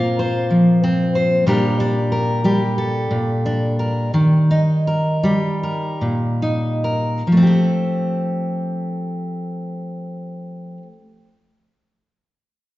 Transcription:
0.00 1.43 A#2 medium
0.00 1.47 A#3 soft
0.00 0.82 C4 soft
0.00 1.44 F4 medium
0.00 0.19 A#4 soft
0.19 1.14 C5 soft
0.50 1.43 F3 soft
0.84 1.47 C4 medium
1.15 1.43 C5 soft
1.46 3.09 A#2 medium
1.46 2.44 G3 soft
1.46 1.79 D4 soft
1.46 2.45 G4 soft
1.46 2.11 A#4 medium
1.80 3.44 D4 soft
2.12 2.78 A#4 medium
2.44 5.22 G3 medium
2.44 5.24 G4 soft
2.78 3.79 A4 soft
3.11 4.10 A#2 soft
3.46 4.10 D4 soft
3.79 4.10 A#4 soft
4.14 7.22 D#3 medium
4.51 6.41 D#4 soft
4.87 5.62 A#4 soft
5.23 7.32 G3 medium
5.23 7.22 G4 soft
5.63 6.83 A#4 soft
6.01 7.22 A#2 soft
6.42 7.22 D#4 soft
6.84 7.22 A#4 soft
7.27 10.77 F3 soft
7.32 10.82 A3 soft
7.37 10.87 C4 soft
7.42 10.92 G4 soft
7.47 10.97 A4 soft

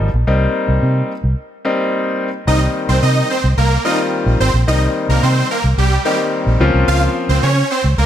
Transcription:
0.14 0.23 A#1 medium
0.27 0.46 C2 loud
0.27 1.11 G3 medium
0.27 1.11 A#3 medium
0.27 1.11 C4 medium
0.27 1.11 D#4 medium
0.69 0.78 C2 loud
0.82 1.01 C3 loud
1.24 1.33 C2 medium
1.65 2.28 G3 loud
1.65 2.28 A#3 medium
1.65 2.28 C4 medium
1.65 2.28 D#4 loud
2.47 2.66 C2 loud
2.47 3.31 D#3 medium
2.47 3.31 G3 medium
2.47 3.31 A#3 medium
2.47 3.31 C4 medium
2.47 3.31 D#4 medium
2.47 2.60 D#4 medium
2.47 2.60 D#5 loud
2.89 2.98 C2 loud
2.89 3.01 C4 medium
2.89 3.01 C5 medium
3.03 3.21 C3 loud
3.03 3.27 D#4 medium
3.03 3.27 D#5 medium
3.30 3.43 C4 medium
3.30 3.42 C5 medium
3.44 3.53 C2 medium
3.58 3.76 C2 medium
3.58 3.82 A#3 medium
3.58 3.82 A#4 medium
3.85 4.48 D#3 medium
3.85 4.48 G3 medium
3.85 4.48 A#3 medium
3.85 4.48 C4 medium
3.85 3.97 D#4 medium
3.85 4.48 F4 medium
3.85 3.97 D#5 medium
4.26 4.36 A#1 medium
4.40 4.49 G#1 medium
4.40 4.53 C4 medium
4.40 4.52 C5 medium
4.54 4.63 A#1 medium
4.67 4.86 C2 loud
4.67 5.51 D#3 medium
4.67 5.51 G3 medium
4.67 5.51 A#3 medium
4.67 5.51 C4 medium
4.67 5.51 D#4 medium
4.67 4.80 D#4 medium
4.67 4.80 D#5 loud
5.09 5.18 C2 loud
5.09 5.22 A#3 medium
5.09 5.21 A#4 medium
5.23 5.41 C3 loud
5.23 5.47 C4 medium
5.23 5.47 C5 medium
5.51 5.63 A#3 medium
5.51 5.63 A#4 medium
5.64 5.73 C2 medium
5.78 5.96 C2 medium
5.78 6.03 G3 medium
5.78 6.02 G4 medium
6.05 6.60 D#3 medium
6.05 6.60 G3 medium
6.05 6.18 G3 medium
6.05 6.59 A#3 medium
6.05 6.59 C4 medium
6.05 6.61 D#4 medium
6.05 6.17 G4 medium
6.47 6.56 A#1 medium
6.60 6.70 C#2 loud
6.60 7.48 F3 medium
6.60 7.49 A#3 medium
6.60 7.49 C4 medium
6.60 7.49 C#4 medium
6.60 7.49 F4 loud
6.74 6.83 C2 medium
6.88 7.06 C#2 loud
6.88 7.00 F4 medium
6.88 7.00 F5 loud
7.29 7.38 C#2 loud
7.29 7.42 C4 medium
7.29 7.41 C5 medium
7.43 7.62 C#3 loud
7.43 7.67 C#4 medium
7.43 7.67 C#5 medium
7.71 7.83 C4 medium
7.71 7.83 C5 medium
7.84 7.93 C#2 medium
7.98 8.06 C#2 loud
7.98 8.06 A#3 medium
7.98 8.06 A#4 medium

